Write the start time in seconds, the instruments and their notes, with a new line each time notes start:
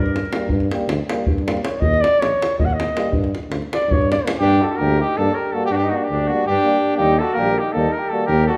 Already playing: tuba G2
0.00 flugelhorn A#4
0.06 davul high
0.16 davul high
0.25 davul high
0.33 euphonium G3 A#3, davul high
0.48 tuba G2, davul low
0.60 davul high
0.71 euphonium G3 A#3, davul high
0.81 davul high
0.88 tuba D2, davul high
1.09 euphonium G3 A#3, davul high
1.27 tuba G2, davul low
1.38 davul high
1.46 euphonium G3 A#3, davul high
1.57 davul high
1.63 flugelhorn C#5, davul high
1.80 tuba D#2, flugelhorn D#5, davul low
1.94 davul high
2.01 flugelhorn D5, davul high
2.13 davul high
2.20 tuba A#1, flugelhorn C#5, davul high
2.42 davul high
2.58 tuba D#2, flugelhorn D#5, davul low
2.65 flugelhorn F#5
2.70 flugelhorn D#5, davul high
2.80 davul high
2.88 davul high
2.95 euphonium G3 A#3, davul high
3.11 tuba G2, davul low
3.24 davul high
3.35 davul high
3.43 davul high
3.49 tuba D2, davul high
3.62 davul high
3.73 flugelhorn D5, davul high
3.82 davul high
3.89 tuba G2, flugelhorn C#5, davul low
4.01 davul high
4.12 flugelhorn D5, davul high
4.19 davul high
4.24 euphonium G3 A#3, davul high
4.36 flugelhorn G4, davul high
4.41 tuba G2, euphonium G3 A#3, flugelhorn D4
4.61 flugelhorn F#4 G4 A4
4.67 flugelhorn D#4 A4
4.72 flugelhorn F#4
4.77 euphonium G3 A#3, flugelhorn G4 A#4
4.81 tuba D2
5.00 flugelhorn D#4 G4
5.17 tuba G2, euphonium G3 A#3, flugelhorn D4 A4
5.33 flugelhorn A4 A#4 C#5
5.38 flugelhorn G4
5.52 euphonium G3 A#3, flugelhorn F#4 A4
5.65 flugelhorn G4
5.70 tuba G2, flugelhorn D4 F#4
5.76 flugelhorn D4 G4
5.83 flugelhorn D#4
5.89 euphonium G3 A#3, flugelhorn F#4
5.95 flugelhorn D4
6.04 flugelhorn G4
6.09 tuba D2, flugelhorn D4
6.27 euphonium G3 A#3, flugelhorn F#4
6.33 flugelhorn D4
6.46 tuba G2, flugelhorn D4 G4
6.64 euphonium G3 A#3
6.96 tuba D#2, euphonium G3 A#3, flugelhorn G4
7.00 flugelhorn D#4
7.18 flugelhorn F#4 A4
7.33 tuba A#1, euphonium G3 A#3, flugelhorn A#4
7.38 flugelhorn G4
7.59 flugelhorn D#4 G4
7.72 tuba D#2, euphonium A#3, flugelhorn D#4 A4
7.77 euphonium G3
7.92 flugelhorn A#4
7.98 flugelhorn G4
8.09 euphonium G3 A#3, flugelhorn A4
8.14 flugelhorn F#4
8.25 tuba D#2, flugelhorn G4 A#4
8.47 euphonium G3 A#3, flugelhorn F#4 A4